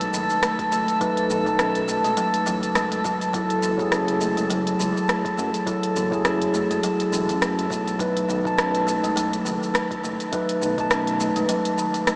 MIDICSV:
0, 0, Header, 1, 6, 480
1, 0, Start_track
1, 0, Tempo, 582524
1, 831, Time_signature, 4, 2, 24, 8
1, 10017, End_track
2, 0, Start_track
2, 0, Title_t, "Synth texture"
2, 0, Program_c, 0, 99
2, 0, Note_on_c, 0, 69, 92
2, 10017, Note_off_c, 0, 69, 0
2, 10017, End_track
3, 0, Start_track
3, 0, Title_t, "Tine electric piano"
3, 0, Program_c, 1, 4
3, 0, Control_c, 1, 64, 127
3, 0, Note_on_c, 1, 57, 86
3, 0, Note_on_c, 1, 63, 79
3, 0, Note_on_c, 1, 71, 87
3, 0, Note_on_c, 1, 81, 98
3, 806, Note_off_c, 1, 63, 0
3, 814, Note_off_c, 1, 81, 0
3, 820, Note_off_c, 1, 57, 0
3, 820, Note_on_c, 1, 57, 84
3, 828, Note_on_c, 1, 63, 75
3, 838, Note_off_c, 1, 71, 0
3, 838, Note_on_c, 1, 71, 86
3, 1168, Note_off_c, 1, 57, 0
3, 1172, Note_off_c, 1, 63, 0
3, 1177, Note_off_c, 1, 71, 0
3, 1208, Note_on_c, 1, 63, 74
3, 1224, Note_on_c, 1, 81, 93
3, 2727, Note_off_c, 1, 63, 0
3, 2735, Note_off_c, 1, 81, 0
3, 2746, Note_on_c, 1, 54, 85
3, 2753, Note_on_c, 1, 64, 78
3, 2762, Note_on_c, 1, 69, 91
3, 2763, Control_c, 1, 64, 0
3, 2910, Control_c, 1, 64, 127
3, 3091, Note_off_c, 1, 54, 0
3, 3095, Note_off_c, 1, 64, 0
3, 3099, Note_off_c, 1, 69, 0
3, 3113, Note_on_c, 1, 54, 88
3, 3129, Note_on_c, 1, 64, 77
3, 3146, Note_on_c, 1, 68, 98
3, 4639, Note_off_c, 1, 54, 0
3, 4647, Note_off_c, 1, 64, 0
3, 4656, Note_off_c, 1, 68, 0
3, 4664, Note_on_c, 1, 54, 82
3, 4671, Note_on_c, 1, 64, 76
3, 4677, Note_on_c, 1, 69, 86
3, 5010, Note_off_c, 1, 54, 0
3, 5013, Note_off_c, 1, 64, 0
3, 5017, Note_off_c, 1, 69, 0
3, 5028, Note_on_c, 1, 54, 88
3, 5047, Note_on_c, 1, 64, 80
3, 5062, Note_on_c, 1, 68, 91
3, 6557, Note_off_c, 1, 54, 0
3, 6566, Note_off_c, 1, 64, 0
3, 6574, Note_off_c, 1, 68, 0
3, 6582, Note_on_c, 1, 57, 88
3, 6589, Note_on_c, 1, 63, 74
3, 6597, Note_on_c, 1, 71, 95
3, 6600, Control_c, 1, 64, 0
3, 6731, Control_c, 1, 64, 127
3, 6929, Note_off_c, 1, 57, 0
3, 6932, Note_off_c, 1, 63, 0
3, 6937, Note_off_c, 1, 71, 0
3, 6963, Note_on_c, 1, 63, 78
3, 6979, Note_on_c, 1, 81, 97
3, 8484, Note_off_c, 1, 63, 0
3, 8492, Note_off_c, 1, 81, 0
3, 8503, Note_on_c, 1, 57, 85
3, 8512, Note_on_c, 1, 63, 78
3, 8519, Note_on_c, 1, 71, 97
3, 8849, Note_off_c, 1, 57, 0
3, 8854, Note_off_c, 1, 63, 0
3, 8858, Note_off_c, 1, 71, 0
3, 8887, Note_on_c, 1, 63, 82
3, 8904, Note_on_c, 1, 81, 95
3, 10017, Note_off_c, 1, 63, 0
3, 10017, Note_off_c, 1, 81, 0
3, 10017, End_track
4, 0, Start_track
4, 0, Title_t, "Kalimba"
4, 0, Program_c, 2, 108
4, 113, Note_on_c, 2, 51, 72
4, 341, Note_off_c, 2, 51, 0
4, 353, Note_on_c, 2, 57, 79
4, 480, Note_off_c, 2, 57, 0
4, 594, Note_on_c, 2, 57, 74
4, 721, Note_off_c, 2, 57, 0
4, 832, Note_on_c, 2, 54, 101
4, 960, Note_off_c, 2, 54, 0
4, 1073, Note_on_c, 2, 51, 73
4, 1302, Note_off_c, 2, 51, 0
4, 1312, Note_on_c, 2, 61, 81
4, 1541, Note_off_c, 2, 61, 0
4, 1550, Note_on_c, 2, 57, 70
4, 1679, Note_off_c, 2, 57, 0
4, 1683, Note_on_c, 2, 56, 75
4, 1784, Note_off_c, 2, 56, 0
4, 1789, Note_on_c, 2, 54, 93
4, 1919, Note_off_c, 2, 54, 0
4, 2029, Note_on_c, 2, 54, 96
4, 2151, Note_off_c, 2, 54, 0
4, 2267, Note_on_c, 2, 56, 96
4, 2391, Note_off_c, 2, 56, 0
4, 2509, Note_on_c, 2, 54, 97
4, 2587, Note_off_c, 2, 54, 0
4, 2746, Note_on_c, 2, 54, 98
4, 2877, Note_off_c, 2, 54, 0
4, 2987, Note_on_c, 2, 52, 70
4, 3218, Note_off_c, 2, 52, 0
4, 3228, Note_on_c, 2, 61, 79
4, 3459, Note_off_c, 2, 61, 0
4, 3471, Note_on_c, 2, 57, 74
4, 3599, Note_off_c, 2, 57, 0
4, 3603, Note_on_c, 2, 56, 73
4, 3704, Note_off_c, 2, 56, 0
4, 3706, Note_on_c, 2, 54, 94
4, 3837, Note_off_c, 2, 54, 0
4, 3948, Note_on_c, 2, 52, 70
4, 4179, Note_off_c, 2, 52, 0
4, 4187, Note_on_c, 2, 57, 77
4, 4317, Note_off_c, 2, 57, 0
4, 4429, Note_on_c, 2, 57, 74
4, 4558, Note_off_c, 2, 57, 0
4, 4672, Note_on_c, 2, 54, 95
4, 4800, Note_off_c, 2, 54, 0
4, 4914, Note_on_c, 2, 52, 75
4, 5142, Note_off_c, 2, 52, 0
4, 5150, Note_on_c, 2, 61, 71
4, 5380, Note_off_c, 2, 61, 0
4, 5388, Note_on_c, 2, 57, 76
4, 5518, Note_off_c, 2, 57, 0
4, 5524, Note_on_c, 2, 56, 67
4, 5625, Note_off_c, 2, 56, 0
4, 5631, Note_on_c, 2, 54, 95
4, 5760, Note_off_c, 2, 54, 0
4, 5871, Note_on_c, 2, 52, 80
4, 6100, Note_off_c, 2, 52, 0
4, 6110, Note_on_c, 2, 57, 77
4, 6239, Note_off_c, 2, 57, 0
4, 6345, Note_on_c, 2, 57, 76
4, 6477, Note_off_c, 2, 57, 0
4, 6587, Note_on_c, 2, 54, 93
4, 6717, Note_off_c, 2, 54, 0
4, 6828, Note_on_c, 2, 51, 69
4, 7059, Note_off_c, 2, 51, 0
4, 7068, Note_on_c, 2, 61, 78
4, 7299, Note_off_c, 2, 61, 0
4, 7308, Note_on_c, 2, 57, 76
4, 7438, Note_off_c, 2, 57, 0
4, 7446, Note_on_c, 2, 56, 76
4, 7546, Note_off_c, 2, 56, 0
4, 7548, Note_on_c, 2, 54, 98
4, 7678, Note_off_c, 2, 54, 0
4, 7788, Note_on_c, 2, 51, 74
4, 8019, Note_off_c, 2, 51, 0
4, 8025, Note_on_c, 2, 57, 78
4, 8157, Note_off_c, 2, 57, 0
4, 8270, Note_on_c, 2, 57, 76
4, 8399, Note_off_c, 2, 57, 0
4, 8512, Note_on_c, 2, 54, 99
4, 8640, Note_off_c, 2, 54, 0
4, 8748, Note_on_c, 2, 51, 70
4, 8979, Note_off_c, 2, 51, 0
4, 8985, Note_on_c, 2, 61, 81
4, 9217, Note_off_c, 2, 61, 0
4, 9230, Note_on_c, 2, 57, 77
4, 9359, Note_off_c, 2, 57, 0
4, 9359, Note_on_c, 2, 56, 73
4, 9462, Note_off_c, 2, 56, 0
4, 9467, Note_on_c, 2, 54, 103
4, 9597, Note_off_c, 2, 54, 0
4, 9705, Note_on_c, 2, 51, 74
4, 9938, Note_off_c, 2, 51, 0
4, 9951, Note_on_c, 2, 57, 78
4, 10017, Note_off_c, 2, 57, 0
4, 10017, End_track
5, 0, Start_track
5, 0, Title_t, "Analog synth bass"
5, 0, Program_c, 3, 38
5, 109, Note_on_c, 3, 30, 88
5, 217, Note_off_c, 3, 30, 0
5, 588, Note_on_c, 3, 30, 102
5, 696, Note_off_c, 3, 30, 0
5, 1068, Note_on_c, 3, 35, 96
5, 1639, Note_off_c, 3, 35, 0
5, 1686, Note_on_c, 3, 35, 80
5, 1769, Note_off_c, 3, 35, 0
5, 2034, Note_on_c, 3, 33, 102
5, 2169, Note_on_c, 3, 30, 82
5, 2181, Note_off_c, 3, 33, 0
5, 2477, Note_off_c, 3, 30, 0
5, 2512, Note_on_c, 3, 30, 93
5, 2956, Note_off_c, 3, 30, 0
5, 2996, Note_on_c, 3, 30, 98
5, 3563, Note_off_c, 3, 30, 0
5, 3608, Note_on_c, 3, 30, 76
5, 3690, Note_off_c, 3, 30, 0
5, 3713, Note_on_c, 3, 30, 76
5, 3908, Note_off_c, 3, 30, 0
5, 3953, Note_on_c, 3, 37, 82
5, 4058, Note_off_c, 3, 37, 0
5, 4431, Note_on_c, 3, 42, 105
5, 4538, Note_off_c, 3, 42, 0
5, 4912, Note_on_c, 3, 30, 97
5, 5481, Note_off_c, 3, 30, 0
5, 5525, Note_on_c, 3, 30, 74
5, 5608, Note_off_c, 3, 30, 0
5, 5868, Note_on_c, 3, 28, 104
5, 6003, Note_on_c, 3, 42, 81
5, 6016, Note_off_c, 3, 28, 0
5, 6314, Note_off_c, 3, 42, 0
5, 6349, Note_on_c, 3, 35, 100
5, 6795, Note_off_c, 3, 35, 0
5, 6827, Note_on_c, 3, 35, 102
5, 7399, Note_off_c, 3, 35, 0
5, 7445, Note_on_c, 3, 35, 79
5, 7528, Note_off_c, 3, 35, 0
5, 7549, Note_on_c, 3, 35, 84
5, 7746, Note_off_c, 3, 35, 0
5, 7789, Note_on_c, 3, 30, 88
5, 7897, Note_off_c, 3, 30, 0
5, 8270, Note_on_c, 3, 30, 108
5, 8377, Note_off_c, 3, 30, 0
5, 8750, Note_on_c, 3, 35, 101
5, 9320, Note_off_c, 3, 35, 0
5, 9362, Note_on_c, 3, 35, 78
5, 9447, Note_off_c, 3, 35, 0
5, 10017, End_track
6, 0, Start_track
6, 0, Title_t, "Drums"
6, 8, Note_on_c, 9, 42, 42
6, 12, Note_on_c, 9, 82, 23
6, 91, Note_off_c, 9, 42, 0
6, 95, Note_off_c, 9, 82, 0
6, 114, Note_on_c, 9, 82, 82
6, 196, Note_off_c, 9, 82, 0
6, 247, Note_on_c, 9, 82, 35
6, 329, Note_off_c, 9, 82, 0
6, 352, Note_on_c, 9, 37, 97
6, 352, Note_on_c, 9, 42, 64
6, 356, Note_on_c, 9, 82, 44
6, 434, Note_off_c, 9, 37, 0
6, 434, Note_off_c, 9, 42, 0
6, 438, Note_off_c, 9, 82, 0
6, 486, Note_on_c, 9, 36, 103
6, 487, Note_on_c, 9, 42, 39
6, 491, Note_on_c, 9, 82, 21
6, 568, Note_off_c, 9, 36, 0
6, 570, Note_off_c, 9, 42, 0
6, 573, Note_off_c, 9, 82, 0
6, 594, Note_on_c, 9, 82, 80
6, 677, Note_off_c, 9, 82, 0
6, 727, Note_on_c, 9, 42, 30
6, 731, Note_on_c, 9, 82, 36
6, 809, Note_off_c, 9, 42, 0
6, 813, Note_off_c, 9, 82, 0
6, 831, Note_on_c, 9, 36, 117
6, 833, Note_on_c, 9, 42, 63
6, 836, Note_on_c, 9, 82, 47
6, 914, Note_off_c, 9, 36, 0
6, 915, Note_off_c, 9, 42, 0
6, 919, Note_off_c, 9, 82, 0
6, 966, Note_on_c, 9, 42, 42
6, 970, Note_on_c, 9, 82, 23
6, 1048, Note_off_c, 9, 42, 0
6, 1052, Note_off_c, 9, 82, 0
6, 1074, Note_on_c, 9, 82, 82
6, 1156, Note_off_c, 9, 82, 0
6, 1207, Note_on_c, 9, 36, 103
6, 1207, Note_on_c, 9, 82, 33
6, 1289, Note_off_c, 9, 36, 0
6, 1290, Note_off_c, 9, 82, 0
6, 1310, Note_on_c, 9, 37, 95
6, 1310, Note_on_c, 9, 42, 66
6, 1314, Note_on_c, 9, 82, 49
6, 1393, Note_off_c, 9, 37, 0
6, 1393, Note_off_c, 9, 42, 0
6, 1396, Note_off_c, 9, 82, 0
6, 1444, Note_on_c, 9, 42, 38
6, 1448, Note_on_c, 9, 82, 21
6, 1527, Note_off_c, 9, 42, 0
6, 1530, Note_off_c, 9, 82, 0
6, 1553, Note_on_c, 9, 82, 72
6, 1635, Note_off_c, 9, 82, 0
6, 1685, Note_on_c, 9, 42, 29
6, 1689, Note_on_c, 9, 82, 36
6, 1767, Note_off_c, 9, 42, 0
6, 1771, Note_off_c, 9, 82, 0
6, 1788, Note_on_c, 9, 42, 63
6, 1792, Note_on_c, 9, 82, 46
6, 1871, Note_off_c, 9, 42, 0
6, 1874, Note_off_c, 9, 82, 0
6, 1927, Note_on_c, 9, 42, 38
6, 1931, Note_on_c, 9, 82, 22
6, 2009, Note_off_c, 9, 42, 0
6, 2013, Note_off_c, 9, 82, 0
6, 2033, Note_on_c, 9, 82, 73
6, 2115, Note_off_c, 9, 82, 0
6, 2166, Note_on_c, 9, 42, 26
6, 2170, Note_on_c, 9, 82, 33
6, 2249, Note_off_c, 9, 42, 0
6, 2252, Note_off_c, 9, 82, 0
6, 2269, Note_on_c, 9, 37, 94
6, 2269, Note_on_c, 9, 42, 60
6, 2273, Note_on_c, 9, 82, 43
6, 2351, Note_off_c, 9, 37, 0
6, 2351, Note_off_c, 9, 42, 0
6, 2355, Note_off_c, 9, 82, 0
6, 2404, Note_on_c, 9, 42, 37
6, 2408, Note_on_c, 9, 82, 20
6, 2487, Note_off_c, 9, 42, 0
6, 2490, Note_off_c, 9, 82, 0
6, 2512, Note_on_c, 9, 36, 104
6, 2513, Note_on_c, 9, 82, 74
6, 2595, Note_off_c, 9, 36, 0
6, 2596, Note_off_c, 9, 82, 0
6, 2648, Note_on_c, 9, 42, 31
6, 2652, Note_on_c, 9, 82, 36
6, 2731, Note_off_c, 9, 42, 0
6, 2734, Note_off_c, 9, 82, 0
6, 2752, Note_on_c, 9, 36, 113
6, 2753, Note_on_c, 9, 42, 66
6, 2757, Note_on_c, 9, 82, 42
6, 2834, Note_off_c, 9, 36, 0
6, 2835, Note_off_c, 9, 42, 0
6, 2839, Note_off_c, 9, 82, 0
6, 2885, Note_on_c, 9, 42, 40
6, 2889, Note_on_c, 9, 82, 23
6, 2967, Note_off_c, 9, 42, 0
6, 2971, Note_off_c, 9, 82, 0
6, 2990, Note_on_c, 9, 82, 85
6, 3073, Note_off_c, 9, 82, 0
6, 3127, Note_on_c, 9, 36, 102
6, 3127, Note_on_c, 9, 82, 31
6, 3209, Note_off_c, 9, 36, 0
6, 3210, Note_off_c, 9, 82, 0
6, 3229, Note_on_c, 9, 37, 89
6, 3229, Note_on_c, 9, 42, 64
6, 3232, Note_on_c, 9, 82, 44
6, 3311, Note_off_c, 9, 37, 0
6, 3311, Note_off_c, 9, 42, 0
6, 3315, Note_off_c, 9, 82, 0
6, 3364, Note_on_c, 9, 42, 36
6, 3368, Note_on_c, 9, 82, 19
6, 3446, Note_off_c, 9, 42, 0
6, 3450, Note_off_c, 9, 82, 0
6, 3470, Note_on_c, 9, 82, 75
6, 3552, Note_off_c, 9, 82, 0
6, 3603, Note_on_c, 9, 42, 31
6, 3606, Note_on_c, 9, 82, 34
6, 3685, Note_off_c, 9, 42, 0
6, 3689, Note_off_c, 9, 82, 0
6, 3711, Note_on_c, 9, 42, 63
6, 3715, Note_on_c, 9, 82, 42
6, 3794, Note_off_c, 9, 42, 0
6, 3797, Note_off_c, 9, 82, 0
6, 3848, Note_on_c, 9, 42, 42
6, 3851, Note_on_c, 9, 82, 21
6, 3930, Note_off_c, 9, 42, 0
6, 3934, Note_off_c, 9, 82, 0
6, 3956, Note_on_c, 9, 82, 72
6, 4038, Note_off_c, 9, 82, 0
6, 4095, Note_on_c, 9, 82, 30
6, 4177, Note_off_c, 9, 82, 0
6, 4195, Note_on_c, 9, 37, 91
6, 4195, Note_on_c, 9, 42, 62
6, 4199, Note_on_c, 9, 82, 43
6, 4277, Note_off_c, 9, 37, 0
6, 4277, Note_off_c, 9, 42, 0
6, 4281, Note_off_c, 9, 82, 0
6, 4325, Note_on_c, 9, 36, 105
6, 4331, Note_on_c, 9, 42, 37
6, 4335, Note_on_c, 9, 82, 20
6, 4408, Note_off_c, 9, 36, 0
6, 4414, Note_off_c, 9, 42, 0
6, 4417, Note_off_c, 9, 82, 0
6, 4436, Note_on_c, 9, 82, 67
6, 4518, Note_off_c, 9, 82, 0
6, 4566, Note_on_c, 9, 42, 30
6, 4570, Note_on_c, 9, 82, 32
6, 4648, Note_off_c, 9, 42, 0
6, 4652, Note_off_c, 9, 82, 0
6, 4669, Note_on_c, 9, 36, 109
6, 4673, Note_on_c, 9, 42, 67
6, 4677, Note_on_c, 9, 82, 42
6, 4752, Note_off_c, 9, 36, 0
6, 4755, Note_off_c, 9, 42, 0
6, 4759, Note_off_c, 9, 82, 0
6, 4806, Note_on_c, 9, 42, 47
6, 4810, Note_on_c, 9, 82, 21
6, 4889, Note_off_c, 9, 42, 0
6, 4893, Note_off_c, 9, 82, 0
6, 4914, Note_on_c, 9, 82, 79
6, 4996, Note_off_c, 9, 82, 0
6, 5044, Note_on_c, 9, 36, 96
6, 5049, Note_on_c, 9, 82, 33
6, 5126, Note_off_c, 9, 36, 0
6, 5131, Note_off_c, 9, 82, 0
6, 5149, Note_on_c, 9, 37, 94
6, 5149, Note_on_c, 9, 42, 65
6, 5153, Note_on_c, 9, 82, 45
6, 5232, Note_off_c, 9, 37, 0
6, 5232, Note_off_c, 9, 42, 0
6, 5235, Note_off_c, 9, 82, 0
6, 5287, Note_on_c, 9, 42, 40
6, 5291, Note_on_c, 9, 82, 20
6, 5369, Note_off_c, 9, 42, 0
6, 5373, Note_off_c, 9, 82, 0
6, 5392, Note_on_c, 9, 82, 65
6, 5474, Note_off_c, 9, 82, 0
6, 5528, Note_on_c, 9, 42, 32
6, 5532, Note_on_c, 9, 82, 31
6, 5610, Note_off_c, 9, 42, 0
6, 5614, Note_off_c, 9, 82, 0
6, 5632, Note_on_c, 9, 42, 67
6, 5635, Note_on_c, 9, 82, 42
6, 5714, Note_off_c, 9, 42, 0
6, 5718, Note_off_c, 9, 82, 0
6, 5768, Note_on_c, 9, 42, 42
6, 5772, Note_on_c, 9, 82, 22
6, 5850, Note_off_c, 9, 42, 0
6, 5854, Note_off_c, 9, 82, 0
6, 5875, Note_on_c, 9, 82, 72
6, 5957, Note_off_c, 9, 82, 0
6, 6009, Note_on_c, 9, 42, 30
6, 6012, Note_on_c, 9, 82, 32
6, 6091, Note_off_c, 9, 42, 0
6, 6095, Note_off_c, 9, 82, 0
6, 6114, Note_on_c, 9, 37, 92
6, 6114, Note_on_c, 9, 42, 66
6, 6118, Note_on_c, 9, 82, 42
6, 6197, Note_off_c, 9, 37, 0
6, 6197, Note_off_c, 9, 42, 0
6, 6201, Note_off_c, 9, 82, 0
6, 6253, Note_on_c, 9, 42, 39
6, 6257, Note_on_c, 9, 82, 21
6, 6335, Note_off_c, 9, 42, 0
6, 6339, Note_off_c, 9, 82, 0
6, 6350, Note_on_c, 9, 36, 93
6, 6358, Note_on_c, 9, 82, 70
6, 6432, Note_off_c, 9, 36, 0
6, 6441, Note_off_c, 9, 82, 0
6, 6489, Note_on_c, 9, 42, 30
6, 6493, Note_on_c, 9, 82, 33
6, 6572, Note_off_c, 9, 42, 0
6, 6576, Note_off_c, 9, 82, 0
6, 6589, Note_on_c, 9, 36, 110
6, 6593, Note_on_c, 9, 42, 72
6, 6597, Note_on_c, 9, 82, 41
6, 6671, Note_off_c, 9, 36, 0
6, 6676, Note_off_c, 9, 42, 0
6, 6680, Note_off_c, 9, 82, 0
6, 6730, Note_on_c, 9, 42, 45
6, 6734, Note_on_c, 9, 82, 22
6, 6812, Note_off_c, 9, 42, 0
6, 6816, Note_off_c, 9, 82, 0
6, 6837, Note_on_c, 9, 82, 78
6, 6919, Note_off_c, 9, 82, 0
6, 6965, Note_on_c, 9, 36, 100
6, 6974, Note_on_c, 9, 82, 32
6, 7047, Note_off_c, 9, 36, 0
6, 7056, Note_off_c, 9, 82, 0
6, 7074, Note_on_c, 9, 37, 105
6, 7074, Note_on_c, 9, 42, 69
6, 7078, Note_on_c, 9, 82, 41
6, 7156, Note_off_c, 9, 37, 0
6, 7156, Note_off_c, 9, 42, 0
6, 7160, Note_off_c, 9, 82, 0
6, 7207, Note_on_c, 9, 42, 42
6, 7211, Note_on_c, 9, 82, 19
6, 7290, Note_off_c, 9, 42, 0
6, 7293, Note_off_c, 9, 82, 0
6, 7318, Note_on_c, 9, 82, 67
6, 7400, Note_off_c, 9, 82, 0
6, 7450, Note_on_c, 9, 42, 32
6, 7454, Note_on_c, 9, 82, 32
6, 7533, Note_off_c, 9, 42, 0
6, 7536, Note_off_c, 9, 82, 0
6, 7557, Note_on_c, 9, 42, 74
6, 7560, Note_on_c, 9, 82, 43
6, 7639, Note_off_c, 9, 42, 0
6, 7643, Note_off_c, 9, 82, 0
6, 7691, Note_on_c, 9, 42, 47
6, 7695, Note_on_c, 9, 82, 20
6, 7773, Note_off_c, 9, 42, 0
6, 7777, Note_off_c, 9, 82, 0
6, 7796, Note_on_c, 9, 82, 71
6, 7878, Note_off_c, 9, 82, 0
6, 7935, Note_on_c, 9, 82, 29
6, 8018, Note_off_c, 9, 82, 0
6, 8033, Note_on_c, 9, 37, 98
6, 8033, Note_on_c, 9, 42, 69
6, 8037, Note_on_c, 9, 82, 42
6, 8115, Note_off_c, 9, 37, 0
6, 8115, Note_off_c, 9, 42, 0
6, 8119, Note_off_c, 9, 82, 0
6, 8165, Note_on_c, 9, 36, 94
6, 8170, Note_on_c, 9, 42, 41
6, 8174, Note_on_c, 9, 82, 18
6, 8247, Note_off_c, 9, 36, 0
6, 8253, Note_off_c, 9, 42, 0
6, 8256, Note_off_c, 9, 82, 0
6, 8276, Note_on_c, 9, 82, 69
6, 8358, Note_off_c, 9, 82, 0
6, 8406, Note_on_c, 9, 42, 31
6, 8410, Note_on_c, 9, 82, 34
6, 8489, Note_off_c, 9, 42, 0
6, 8492, Note_off_c, 9, 82, 0
6, 8509, Note_on_c, 9, 42, 70
6, 8510, Note_on_c, 9, 36, 106
6, 8513, Note_on_c, 9, 82, 43
6, 8592, Note_off_c, 9, 36, 0
6, 8592, Note_off_c, 9, 42, 0
6, 8596, Note_off_c, 9, 82, 0
6, 8645, Note_on_c, 9, 42, 46
6, 8648, Note_on_c, 9, 82, 22
6, 8727, Note_off_c, 9, 42, 0
6, 8731, Note_off_c, 9, 82, 0
6, 8754, Note_on_c, 9, 82, 79
6, 8836, Note_off_c, 9, 82, 0
6, 8883, Note_on_c, 9, 36, 99
6, 8883, Note_on_c, 9, 42, 32
6, 8887, Note_on_c, 9, 82, 33
6, 8966, Note_off_c, 9, 36, 0
6, 8966, Note_off_c, 9, 42, 0
6, 8970, Note_off_c, 9, 82, 0
6, 8988, Note_on_c, 9, 37, 104
6, 8988, Note_on_c, 9, 42, 71
6, 8992, Note_on_c, 9, 82, 42
6, 9070, Note_off_c, 9, 37, 0
6, 9070, Note_off_c, 9, 42, 0
6, 9074, Note_off_c, 9, 82, 0
6, 9125, Note_on_c, 9, 42, 41
6, 9128, Note_on_c, 9, 82, 20
6, 9207, Note_off_c, 9, 42, 0
6, 9211, Note_off_c, 9, 82, 0
6, 9232, Note_on_c, 9, 82, 73
6, 9314, Note_off_c, 9, 82, 0
6, 9361, Note_on_c, 9, 42, 33
6, 9365, Note_on_c, 9, 82, 30
6, 9444, Note_off_c, 9, 42, 0
6, 9447, Note_off_c, 9, 82, 0
6, 9466, Note_on_c, 9, 42, 73
6, 9470, Note_on_c, 9, 82, 43
6, 9549, Note_off_c, 9, 42, 0
6, 9552, Note_off_c, 9, 82, 0
6, 9602, Note_on_c, 9, 42, 45
6, 9605, Note_on_c, 9, 82, 21
6, 9684, Note_off_c, 9, 42, 0
6, 9688, Note_off_c, 9, 82, 0
6, 9709, Note_on_c, 9, 82, 69
6, 9791, Note_off_c, 9, 82, 0
6, 9840, Note_on_c, 9, 42, 31
6, 9844, Note_on_c, 9, 82, 32
6, 9923, Note_off_c, 9, 42, 0
6, 9926, Note_off_c, 9, 82, 0
6, 9947, Note_on_c, 9, 37, 94
6, 9947, Note_on_c, 9, 42, 65
6, 9951, Note_on_c, 9, 82, 42
6, 10017, Note_off_c, 9, 37, 0
6, 10017, Note_off_c, 9, 42, 0
6, 10017, Note_off_c, 9, 82, 0
6, 10017, End_track
0, 0, End_of_file